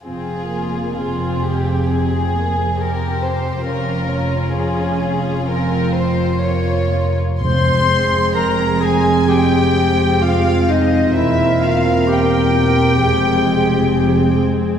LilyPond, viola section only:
\new Staff \with { instrumentName = "Viola section" } { \time 4/4 \key f \minor \tempo 4 = 65 << { r1 | r1 | aes'1 | bes'2 aes'2 | } \\ { c'8 bes8 c'4 c'8 bes8 c'4 | des'8 des'4. c'4 bes4 | c'1~ | c'2 c'2 | } >> }